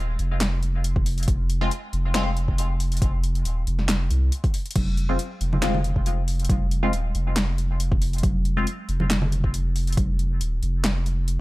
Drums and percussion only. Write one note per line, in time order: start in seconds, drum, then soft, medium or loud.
0.19 closed hi-hat medium
0.41 snare loud
0.41 clap medium
0.41 closed hi-hat medium
0.63 closed hi-hat medium
0.84 closed hi-hat medium
0.96 kick loud
1.06 open hi-hat loud
1.18 closed hi-hat medium
1.23 closed hi-hat medium
1.28 kick loud
1.28 closed hi-hat medium
1.50 closed hi-hat medium
1.71 closed hi-hat medium
1.93 closed hi-hat medium
2.15 snare loud
2.15 clap medium
2.15 closed hi-hat medium
2.37 closed hi-hat medium
2.48 kick medium
2.58 closed hi-hat medium
2.80 open hi-hat loud
2.92 closed hi-hat medium
2.97 closed hi-hat medium
3.02 kick loud
3.02 closed hi-hat medium
3.24 closed hi-hat medium
3.35 closed hi-hat soft
3.45 closed hi-hat medium
3.67 closed hi-hat medium
3.79 snare soft
3.89 snare loud
3.89 clap medium
3.89 closed hi-hat medium
4.11 closed hi-hat medium
4.32 closed hi-hat medium
4.44 kick loud
4.44 closed hi-hat soft
4.54 open hi-hat loud
4.66 closed hi-hat medium
4.71 closed hi-hat medium
4.76 kick loud
4.76 closed hi-hat medium
4.76 crash medium
4.76 high conga medium
4.97 closed hi-hat medium
5.19 closed hi-hat medium
5.41 closed hi-hat medium
5.53 high conga medium
5.53 low conga medium
5.63 snare loud
5.63 clap medium
5.63 closed hi-hat medium
5.74 low conga loud
5.84 closed hi-hat medium
5.96 kick medium
6.06 closed hi-hat medium
6.28 open hi-hat medium
6.40 closed hi-hat medium
6.45 closed hi-hat medium
6.49 kick loud
6.49 closed hi-hat medium
6.49 high conga medium
6.71 closed hi-hat medium
6.93 closed hi-hat medium
7.15 closed hi-hat medium
7.36 snare loud
7.36 clap medium
7.36 closed hi-hat medium
7.58 closed hi-hat medium
7.80 closed hi-hat medium
7.92 kick loud
8.02 open hi-hat medium
8.13 closed hi-hat medium
8.18 closed hi-hat medium
8.23 kick loud
8.23 closed hi-hat medium
8.23 high conga medium
8.45 closed hi-hat medium
8.67 closed hi-hat medium
8.89 closed hi-hat medium
9.00 high conga medium
9.00 low conga medium
9.10 snare loud
9.10 clap medium
9.10 closed hi-hat medium
9.22 low conga medium
9.32 closed hi-hat medium
9.44 kick medium
9.54 closed hi-hat medium
9.76 open hi-hat medium
9.87 closed hi-hat soft
9.92 closed hi-hat medium
9.97 kick loud
9.97 closed hi-hat medium
9.97 high conga medium
10.19 closed hi-hat medium
10.41 closed hi-hat medium
10.63 closed hi-hat medium
10.84 snare loud
10.84 clap medium
10.84 closed hi-hat medium
11.06 closed hi-hat soft
11.28 closed hi-hat medium